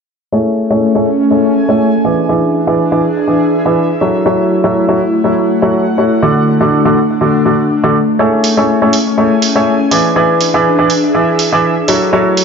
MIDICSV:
0, 0, Header, 1, 4, 480
1, 0, Start_track
1, 0, Key_signature, 3, "major"
1, 0, Tempo, 491803
1, 317, Time_signature, 4, 2, 24, 8
1, 12145, End_track
2, 0, Start_track
2, 0, Title_t, "Grand piano"
2, 0, Program_c, 0, 0
2, 317, Note_on_c, 0, 57, 86
2, 317, Note_on_c, 0, 64, 84
2, 317, Note_on_c, 0, 68, 77
2, 317, Note_on_c, 0, 69, 77
2, 317, Note_on_c, 0, 73, 91
2, 657, Note_off_c, 0, 57, 0
2, 657, Note_off_c, 0, 64, 0
2, 657, Note_off_c, 0, 68, 0
2, 657, Note_off_c, 0, 69, 0
2, 657, Note_off_c, 0, 73, 0
2, 688, Note_on_c, 0, 57, 83
2, 688, Note_on_c, 0, 64, 78
2, 688, Note_on_c, 0, 68, 78
2, 688, Note_on_c, 0, 69, 73
2, 688, Note_on_c, 0, 73, 95
2, 887, Note_off_c, 0, 57, 0
2, 887, Note_off_c, 0, 64, 0
2, 887, Note_off_c, 0, 68, 0
2, 887, Note_off_c, 0, 69, 0
2, 887, Note_off_c, 0, 73, 0
2, 927, Note_on_c, 0, 57, 85
2, 927, Note_on_c, 0, 68, 79
2, 927, Note_on_c, 0, 69, 77
2, 928, Note_on_c, 0, 64, 80
2, 928, Note_on_c, 0, 73, 94
2, 1044, Note_off_c, 0, 57, 0
2, 1044, Note_off_c, 0, 64, 0
2, 1044, Note_off_c, 0, 68, 0
2, 1044, Note_off_c, 0, 69, 0
2, 1044, Note_off_c, 0, 73, 0
2, 1277, Note_on_c, 0, 57, 66
2, 1277, Note_on_c, 0, 64, 62
2, 1277, Note_on_c, 0, 68, 61
2, 1277, Note_on_c, 0, 69, 62
2, 1277, Note_on_c, 0, 73, 73
2, 1616, Note_off_c, 0, 64, 0
2, 1616, Note_off_c, 0, 68, 0
2, 1616, Note_off_c, 0, 69, 0
2, 1617, Note_off_c, 0, 57, 0
2, 1617, Note_off_c, 0, 73, 0
2, 1647, Note_on_c, 0, 57, 84
2, 1647, Note_on_c, 0, 64, 80
2, 1647, Note_on_c, 0, 68, 81
2, 1647, Note_on_c, 0, 69, 79
2, 1647, Note_on_c, 0, 73, 100
2, 1846, Note_off_c, 0, 64, 0
2, 1846, Note_off_c, 0, 73, 0
2, 1847, Note_off_c, 0, 57, 0
2, 1847, Note_off_c, 0, 68, 0
2, 1847, Note_off_c, 0, 69, 0
2, 1997, Note_on_c, 0, 52, 75
2, 1997, Note_on_c, 0, 64, 68
2, 1997, Note_on_c, 0, 68, 69
2, 1997, Note_on_c, 0, 71, 68
2, 1997, Note_on_c, 0, 74, 84
2, 2203, Note_off_c, 0, 52, 0
2, 2203, Note_off_c, 0, 64, 0
2, 2203, Note_off_c, 0, 68, 0
2, 2203, Note_off_c, 0, 71, 0
2, 2203, Note_off_c, 0, 74, 0
2, 2236, Note_on_c, 0, 52, 84
2, 2236, Note_on_c, 0, 64, 81
2, 2236, Note_on_c, 0, 68, 82
2, 2236, Note_on_c, 0, 71, 78
2, 2236, Note_on_c, 0, 74, 97
2, 2576, Note_off_c, 0, 52, 0
2, 2576, Note_off_c, 0, 64, 0
2, 2576, Note_off_c, 0, 68, 0
2, 2576, Note_off_c, 0, 71, 0
2, 2576, Note_off_c, 0, 74, 0
2, 2608, Note_on_c, 0, 52, 89
2, 2608, Note_on_c, 0, 64, 76
2, 2608, Note_on_c, 0, 68, 81
2, 2608, Note_on_c, 0, 71, 77
2, 2608, Note_on_c, 0, 74, 92
2, 2807, Note_off_c, 0, 52, 0
2, 2807, Note_off_c, 0, 64, 0
2, 2807, Note_off_c, 0, 68, 0
2, 2807, Note_off_c, 0, 71, 0
2, 2807, Note_off_c, 0, 74, 0
2, 2848, Note_on_c, 0, 52, 84
2, 2848, Note_on_c, 0, 64, 79
2, 2848, Note_on_c, 0, 68, 80
2, 2848, Note_on_c, 0, 71, 78
2, 2848, Note_on_c, 0, 74, 101
2, 2964, Note_off_c, 0, 52, 0
2, 2964, Note_off_c, 0, 64, 0
2, 2964, Note_off_c, 0, 68, 0
2, 2964, Note_off_c, 0, 71, 0
2, 2964, Note_off_c, 0, 74, 0
2, 3197, Note_on_c, 0, 52, 66
2, 3197, Note_on_c, 0, 64, 59
2, 3197, Note_on_c, 0, 68, 61
2, 3197, Note_on_c, 0, 71, 61
2, 3197, Note_on_c, 0, 74, 79
2, 3537, Note_off_c, 0, 52, 0
2, 3537, Note_off_c, 0, 64, 0
2, 3537, Note_off_c, 0, 68, 0
2, 3537, Note_off_c, 0, 71, 0
2, 3537, Note_off_c, 0, 74, 0
2, 3567, Note_on_c, 0, 52, 84
2, 3567, Note_on_c, 0, 64, 75
2, 3567, Note_on_c, 0, 68, 78
2, 3567, Note_on_c, 0, 74, 91
2, 3568, Note_on_c, 0, 71, 83
2, 3767, Note_off_c, 0, 52, 0
2, 3767, Note_off_c, 0, 64, 0
2, 3767, Note_off_c, 0, 68, 0
2, 3767, Note_off_c, 0, 71, 0
2, 3767, Note_off_c, 0, 74, 0
2, 3916, Note_on_c, 0, 54, 77
2, 3916, Note_on_c, 0, 64, 73
2, 3916, Note_on_c, 0, 66, 72
2, 3916, Note_on_c, 0, 69, 69
2, 3916, Note_on_c, 0, 73, 83
2, 4122, Note_off_c, 0, 54, 0
2, 4122, Note_off_c, 0, 64, 0
2, 4122, Note_off_c, 0, 66, 0
2, 4122, Note_off_c, 0, 69, 0
2, 4122, Note_off_c, 0, 73, 0
2, 4155, Note_on_c, 0, 54, 90
2, 4155, Note_on_c, 0, 64, 86
2, 4155, Note_on_c, 0, 66, 84
2, 4155, Note_on_c, 0, 69, 77
2, 4155, Note_on_c, 0, 73, 103
2, 4496, Note_off_c, 0, 54, 0
2, 4496, Note_off_c, 0, 64, 0
2, 4496, Note_off_c, 0, 66, 0
2, 4496, Note_off_c, 0, 69, 0
2, 4496, Note_off_c, 0, 73, 0
2, 4527, Note_on_c, 0, 54, 90
2, 4527, Note_on_c, 0, 64, 81
2, 4527, Note_on_c, 0, 66, 80
2, 4527, Note_on_c, 0, 69, 77
2, 4527, Note_on_c, 0, 73, 91
2, 4726, Note_off_c, 0, 54, 0
2, 4726, Note_off_c, 0, 66, 0
2, 4727, Note_off_c, 0, 64, 0
2, 4727, Note_off_c, 0, 69, 0
2, 4727, Note_off_c, 0, 73, 0
2, 4767, Note_on_c, 0, 54, 82
2, 4767, Note_on_c, 0, 64, 81
2, 4767, Note_on_c, 0, 66, 84
2, 4767, Note_on_c, 0, 69, 79
2, 4767, Note_on_c, 0, 73, 96
2, 4883, Note_off_c, 0, 54, 0
2, 4883, Note_off_c, 0, 64, 0
2, 4883, Note_off_c, 0, 66, 0
2, 4883, Note_off_c, 0, 69, 0
2, 4883, Note_off_c, 0, 73, 0
2, 5116, Note_on_c, 0, 54, 70
2, 5116, Note_on_c, 0, 64, 65
2, 5116, Note_on_c, 0, 66, 63
2, 5116, Note_on_c, 0, 69, 64
2, 5116, Note_on_c, 0, 73, 74
2, 5456, Note_off_c, 0, 54, 0
2, 5456, Note_off_c, 0, 64, 0
2, 5456, Note_off_c, 0, 66, 0
2, 5456, Note_off_c, 0, 69, 0
2, 5456, Note_off_c, 0, 73, 0
2, 5488, Note_on_c, 0, 54, 87
2, 5488, Note_on_c, 0, 64, 78
2, 5488, Note_on_c, 0, 66, 79
2, 5488, Note_on_c, 0, 69, 78
2, 5488, Note_on_c, 0, 73, 94
2, 5687, Note_off_c, 0, 54, 0
2, 5687, Note_off_c, 0, 64, 0
2, 5687, Note_off_c, 0, 66, 0
2, 5687, Note_off_c, 0, 69, 0
2, 5687, Note_off_c, 0, 73, 0
2, 5836, Note_on_c, 0, 64, 73
2, 5836, Note_on_c, 0, 66, 68
2, 5836, Note_on_c, 0, 69, 67
2, 5836, Note_on_c, 0, 73, 82
2, 6042, Note_off_c, 0, 64, 0
2, 6042, Note_off_c, 0, 69, 0
2, 6042, Note_off_c, 0, 73, 0
2, 6043, Note_off_c, 0, 66, 0
2, 6076, Note_on_c, 0, 50, 91
2, 6076, Note_on_c, 0, 62, 81
2, 6076, Note_on_c, 0, 66, 85
2, 6076, Note_on_c, 0, 69, 85
2, 6076, Note_on_c, 0, 74, 103
2, 6416, Note_off_c, 0, 50, 0
2, 6416, Note_off_c, 0, 62, 0
2, 6416, Note_off_c, 0, 66, 0
2, 6416, Note_off_c, 0, 69, 0
2, 6416, Note_off_c, 0, 74, 0
2, 6447, Note_on_c, 0, 50, 83
2, 6447, Note_on_c, 0, 66, 77
2, 6447, Note_on_c, 0, 69, 81
2, 6447, Note_on_c, 0, 74, 94
2, 6448, Note_on_c, 0, 62, 82
2, 6647, Note_off_c, 0, 50, 0
2, 6647, Note_off_c, 0, 62, 0
2, 6647, Note_off_c, 0, 66, 0
2, 6647, Note_off_c, 0, 69, 0
2, 6647, Note_off_c, 0, 74, 0
2, 6687, Note_on_c, 0, 50, 87
2, 6687, Note_on_c, 0, 62, 81
2, 6687, Note_on_c, 0, 66, 76
2, 6688, Note_on_c, 0, 69, 82
2, 6688, Note_on_c, 0, 74, 91
2, 6804, Note_off_c, 0, 50, 0
2, 6804, Note_off_c, 0, 62, 0
2, 6804, Note_off_c, 0, 66, 0
2, 6804, Note_off_c, 0, 69, 0
2, 6804, Note_off_c, 0, 74, 0
2, 7036, Note_on_c, 0, 62, 64
2, 7036, Note_on_c, 0, 66, 61
2, 7036, Note_on_c, 0, 69, 66
2, 7036, Note_on_c, 0, 74, 77
2, 7037, Note_on_c, 0, 50, 72
2, 7255, Note_off_c, 0, 50, 0
2, 7255, Note_off_c, 0, 62, 0
2, 7255, Note_off_c, 0, 66, 0
2, 7255, Note_off_c, 0, 69, 0
2, 7255, Note_off_c, 0, 74, 0
2, 7276, Note_on_c, 0, 50, 67
2, 7276, Note_on_c, 0, 62, 64
2, 7276, Note_on_c, 0, 66, 62
2, 7276, Note_on_c, 0, 69, 61
2, 7276, Note_on_c, 0, 74, 72
2, 7483, Note_off_c, 0, 50, 0
2, 7483, Note_off_c, 0, 62, 0
2, 7483, Note_off_c, 0, 66, 0
2, 7483, Note_off_c, 0, 69, 0
2, 7483, Note_off_c, 0, 74, 0
2, 7648, Note_on_c, 0, 50, 92
2, 7648, Note_on_c, 0, 62, 76
2, 7648, Note_on_c, 0, 66, 78
2, 7648, Note_on_c, 0, 69, 82
2, 7648, Note_on_c, 0, 74, 98
2, 7764, Note_off_c, 0, 50, 0
2, 7764, Note_off_c, 0, 62, 0
2, 7764, Note_off_c, 0, 66, 0
2, 7764, Note_off_c, 0, 69, 0
2, 7764, Note_off_c, 0, 74, 0
2, 7996, Note_on_c, 0, 57, 90
2, 7996, Note_on_c, 0, 64, 78
2, 7996, Note_on_c, 0, 68, 83
2, 7996, Note_on_c, 0, 69, 79
2, 7996, Note_on_c, 0, 73, 97
2, 8336, Note_off_c, 0, 57, 0
2, 8336, Note_off_c, 0, 64, 0
2, 8336, Note_off_c, 0, 68, 0
2, 8336, Note_off_c, 0, 69, 0
2, 8336, Note_off_c, 0, 73, 0
2, 8367, Note_on_c, 0, 64, 78
2, 8367, Note_on_c, 0, 68, 76
2, 8368, Note_on_c, 0, 57, 82
2, 8368, Note_on_c, 0, 69, 75
2, 8368, Note_on_c, 0, 73, 89
2, 8567, Note_off_c, 0, 57, 0
2, 8567, Note_off_c, 0, 64, 0
2, 8567, Note_off_c, 0, 68, 0
2, 8567, Note_off_c, 0, 69, 0
2, 8567, Note_off_c, 0, 73, 0
2, 8608, Note_on_c, 0, 57, 87
2, 8608, Note_on_c, 0, 64, 78
2, 8608, Note_on_c, 0, 68, 83
2, 8608, Note_on_c, 0, 69, 79
2, 8608, Note_on_c, 0, 73, 92
2, 8724, Note_off_c, 0, 57, 0
2, 8724, Note_off_c, 0, 64, 0
2, 8724, Note_off_c, 0, 68, 0
2, 8724, Note_off_c, 0, 69, 0
2, 8724, Note_off_c, 0, 73, 0
2, 8956, Note_on_c, 0, 57, 73
2, 8956, Note_on_c, 0, 64, 65
2, 8956, Note_on_c, 0, 68, 60
2, 8956, Note_on_c, 0, 69, 62
2, 8956, Note_on_c, 0, 73, 78
2, 9296, Note_off_c, 0, 57, 0
2, 9296, Note_off_c, 0, 64, 0
2, 9296, Note_off_c, 0, 68, 0
2, 9296, Note_off_c, 0, 69, 0
2, 9296, Note_off_c, 0, 73, 0
2, 9327, Note_on_c, 0, 57, 83
2, 9327, Note_on_c, 0, 64, 79
2, 9327, Note_on_c, 0, 68, 74
2, 9327, Note_on_c, 0, 69, 79
2, 9327, Note_on_c, 0, 73, 98
2, 9526, Note_off_c, 0, 57, 0
2, 9526, Note_off_c, 0, 64, 0
2, 9526, Note_off_c, 0, 68, 0
2, 9526, Note_off_c, 0, 69, 0
2, 9526, Note_off_c, 0, 73, 0
2, 9675, Note_on_c, 0, 74, 87
2, 9676, Note_on_c, 0, 52, 77
2, 9676, Note_on_c, 0, 64, 72
2, 9676, Note_on_c, 0, 68, 67
2, 9676, Note_on_c, 0, 71, 72
2, 9882, Note_off_c, 0, 52, 0
2, 9882, Note_off_c, 0, 64, 0
2, 9882, Note_off_c, 0, 68, 0
2, 9882, Note_off_c, 0, 71, 0
2, 9882, Note_off_c, 0, 74, 0
2, 9916, Note_on_c, 0, 52, 88
2, 9916, Note_on_c, 0, 64, 80
2, 9916, Note_on_c, 0, 68, 81
2, 9916, Note_on_c, 0, 71, 79
2, 9916, Note_on_c, 0, 74, 98
2, 10256, Note_off_c, 0, 52, 0
2, 10256, Note_off_c, 0, 64, 0
2, 10256, Note_off_c, 0, 68, 0
2, 10256, Note_off_c, 0, 71, 0
2, 10256, Note_off_c, 0, 74, 0
2, 10288, Note_on_c, 0, 52, 84
2, 10288, Note_on_c, 0, 64, 80
2, 10288, Note_on_c, 0, 68, 82
2, 10288, Note_on_c, 0, 71, 78
2, 10288, Note_on_c, 0, 74, 95
2, 10487, Note_off_c, 0, 52, 0
2, 10487, Note_off_c, 0, 64, 0
2, 10487, Note_off_c, 0, 68, 0
2, 10487, Note_off_c, 0, 71, 0
2, 10487, Note_off_c, 0, 74, 0
2, 10528, Note_on_c, 0, 52, 85
2, 10528, Note_on_c, 0, 64, 78
2, 10528, Note_on_c, 0, 68, 84
2, 10528, Note_on_c, 0, 71, 83
2, 10528, Note_on_c, 0, 74, 97
2, 10644, Note_off_c, 0, 52, 0
2, 10644, Note_off_c, 0, 64, 0
2, 10644, Note_off_c, 0, 68, 0
2, 10644, Note_off_c, 0, 71, 0
2, 10644, Note_off_c, 0, 74, 0
2, 10877, Note_on_c, 0, 52, 72
2, 10877, Note_on_c, 0, 64, 61
2, 10877, Note_on_c, 0, 68, 62
2, 10877, Note_on_c, 0, 71, 63
2, 10877, Note_on_c, 0, 74, 77
2, 11217, Note_off_c, 0, 52, 0
2, 11217, Note_off_c, 0, 64, 0
2, 11217, Note_off_c, 0, 68, 0
2, 11217, Note_off_c, 0, 71, 0
2, 11217, Note_off_c, 0, 74, 0
2, 11248, Note_on_c, 0, 52, 86
2, 11248, Note_on_c, 0, 64, 75
2, 11248, Note_on_c, 0, 68, 79
2, 11248, Note_on_c, 0, 71, 80
2, 11248, Note_on_c, 0, 74, 92
2, 11447, Note_off_c, 0, 52, 0
2, 11447, Note_off_c, 0, 64, 0
2, 11447, Note_off_c, 0, 68, 0
2, 11447, Note_off_c, 0, 71, 0
2, 11447, Note_off_c, 0, 74, 0
2, 11597, Note_on_c, 0, 54, 78
2, 11597, Note_on_c, 0, 64, 71
2, 11597, Note_on_c, 0, 66, 68
2, 11597, Note_on_c, 0, 69, 71
2, 11597, Note_on_c, 0, 73, 84
2, 11803, Note_off_c, 0, 54, 0
2, 11803, Note_off_c, 0, 64, 0
2, 11803, Note_off_c, 0, 66, 0
2, 11803, Note_off_c, 0, 69, 0
2, 11803, Note_off_c, 0, 73, 0
2, 11837, Note_on_c, 0, 54, 89
2, 11837, Note_on_c, 0, 64, 77
2, 11837, Note_on_c, 0, 66, 82
2, 11837, Note_on_c, 0, 69, 83
2, 11837, Note_on_c, 0, 73, 100
2, 12145, Note_off_c, 0, 54, 0
2, 12145, Note_off_c, 0, 64, 0
2, 12145, Note_off_c, 0, 66, 0
2, 12145, Note_off_c, 0, 69, 0
2, 12145, Note_off_c, 0, 73, 0
2, 12145, End_track
3, 0, Start_track
3, 0, Title_t, "Analog synth pad"
3, 0, Program_c, 1, 89
3, 315, Note_on_c, 1, 61, 78
3, 497, Note_on_c, 1, 57, 72
3, 1075, Note_on_c, 1, 80, 87
3, 1996, Note_off_c, 1, 61, 0
3, 1997, Note_off_c, 1, 57, 0
3, 1999, Note_on_c, 1, 62, 84
3, 2399, Note_on_c, 1, 68, 83
3, 2675, Note_on_c, 1, 76, 76
3, 2769, Note_off_c, 1, 80, 0
3, 3916, Note_on_c, 1, 64, 78
3, 3917, Note_off_c, 1, 68, 0
3, 3918, Note_off_c, 1, 62, 0
3, 4147, Note_on_c, 1, 57, 71
3, 4790, Note_off_c, 1, 76, 0
3, 4889, Note_on_c, 1, 78, 73
3, 6077, Note_on_c, 1, 62, 86
3, 6849, Note_off_c, 1, 64, 0
3, 7995, Note_on_c, 1, 61, 82
3, 7997, Note_off_c, 1, 62, 0
3, 8365, Note_on_c, 1, 80, 81
3, 8673, Note_off_c, 1, 78, 0
3, 9676, Note_off_c, 1, 61, 0
3, 9677, Note_off_c, 1, 57, 0
3, 9677, Note_on_c, 1, 62, 84
3, 10092, Note_on_c, 1, 68, 70
3, 10345, Note_on_c, 1, 76, 94
3, 10359, Note_off_c, 1, 80, 0
3, 11597, Note_off_c, 1, 62, 0
3, 11597, Note_off_c, 1, 68, 0
3, 11597, Note_on_c, 1, 64, 73
3, 11871, Note_on_c, 1, 57, 81
3, 12145, Note_off_c, 1, 57, 0
3, 12145, Note_off_c, 1, 64, 0
3, 12145, Note_off_c, 1, 76, 0
3, 12145, End_track
4, 0, Start_track
4, 0, Title_t, "Drums"
4, 8236, Note_on_c, 9, 46, 98
4, 8334, Note_off_c, 9, 46, 0
4, 8716, Note_on_c, 9, 46, 82
4, 8814, Note_off_c, 9, 46, 0
4, 9196, Note_on_c, 9, 46, 106
4, 9294, Note_off_c, 9, 46, 0
4, 9676, Note_on_c, 9, 46, 90
4, 9774, Note_off_c, 9, 46, 0
4, 10156, Note_on_c, 9, 46, 93
4, 10254, Note_off_c, 9, 46, 0
4, 10636, Note_on_c, 9, 46, 84
4, 10734, Note_off_c, 9, 46, 0
4, 11116, Note_on_c, 9, 46, 100
4, 11214, Note_off_c, 9, 46, 0
4, 11596, Note_on_c, 9, 46, 88
4, 11694, Note_off_c, 9, 46, 0
4, 12076, Note_on_c, 9, 46, 98
4, 12145, Note_off_c, 9, 46, 0
4, 12145, End_track
0, 0, End_of_file